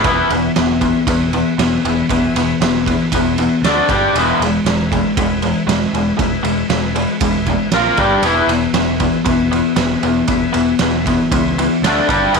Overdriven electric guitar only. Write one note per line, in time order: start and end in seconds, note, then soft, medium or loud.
0.05 0.29 E3 medium
0.05 0.29 B3 loud
0.05 0.29 E4 loud
0.31 0.54 E3 medium
0.31 0.54 B3 medium
0.56 0.79 E3 medium
0.56 0.79 B3 medium
0.81 1.04 E3 medium
0.81 1.04 B3 medium
1.07 1.30 E3 medium
1.07 1.31 B3 medium
1.34 1.56 E3 medium
1.34 1.56 B3 medium
1.59 1.82 E3 medium
1.59 1.82 B3 medium
1.86 2.08 E3 medium
1.86 2.08 B3 medium
2.10 2.33 E3 medium
2.10 2.33 B3 medium
2.37 2.59 E3 medium
2.37 2.59 B3 medium
2.62 2.84 E3 medium
2.62 2.84 B3 medium
2.87 3.10 E3 medium
2.87 3.10 B3 medium
3.14 3.36 E3 medium
3.14 3.36 B3 loud
3.39 3.61 E3 medium
3.39 3.61 B3 medium
3.65 3.88 D3 medium
3.65 3.88 A3 medium
3.65 3.89 D4 medium
3.89 4.13 G3 loud
3.89 4.14 D4 loud
3.89 4.14 G4 loud
4.16 4.39 E3 medium
4.16 4.40 G#3 medium
4.16 4.40 B3 medium
4.43 4.65 E3 medium
4.43 4.64 G#3 medium
4.67 4.89 E3 medium
4.67 4.89 G#3 medium
4.92 5.15 E3 medium
4.92 5.15 G#3 medium
5.18 5.40 E3 medium
5.18 5.41 G#3 medium
5.42 5.65 E3 medium
5.42 5.65 G#3 medium
5.67 5.91 E3 medium
5.67 5.91 G#3 medium
5.95 6.16 E3 medium
5.95 6.16 G#3 medium
6.17 6.41 E3 medium
6.17 6.41 G#3 medium
6.43 6.67 E3 medium
6.43 6.67 G#3 medium
6.70 6.93 E3 medium
6.70 6.94 G#3 medium
6.95 7.19 E3 medium
6.95 7.19 G#3 medium
7.21 7.44 E3 medium
7.21 7.45 G#3 medium
7.48 7.71 E3 medium
7.48 7.71 G#3 medium
7.73 7.97 A#3 medium
7.73 7.98 F4 medium
7.73 7.98 A#4 medium
7.98 8.22 G3 loud
7.98 8.23 D4 medium
7.98 8.23 G4 medium
8.24 8.48 E3 medium
8.24 8.48 B3 medium
8.24 8.49 E4 medium
8.50 8.73 E3 medium
8.50 8.73 B3 medium
8.74 8.98 E3 medium
8.74 8.98 B3 medium
9.00 9.23 E3 medium
9.00 9.24 B3 medium
9.25 9.49 E3 medium
9.25 9.49 B3 medium
9.52 9.75 E3 medium
9.52 9.75 B3 medium
9.76 10.00 E3 medium
9.76 10.01 B3 medium
10.04 10.27 E3 medium
10.04 10.27 B3 medium
10.28 10.51 E3 medium
10.28 10.52 B3 medium
10.53 10.77 E3 medium
10.53 10.77 B3 medium
10.81 11.04 E3 medium
10.81 11.04 B3 medium
11.07 11.30 E3 medium
11.07 11.30 B3 medium
11.32 11.55 E3 medium
11.32 11.55 B3 medium
11.58 11.81 E3 medium
11.58 11.81 B3 medium
11.84 12.08 D3 medium
11.84 12.08 A3 medium
11.84 12.08 D4 medium
12.08 12.32 G3 medium
12.08 12.33 D4 medium
12.08 12.33 G4 loud
12.33 12.40 E3 loud
12.33 12.40 G#3 medium
12.33 12.40 B3 medium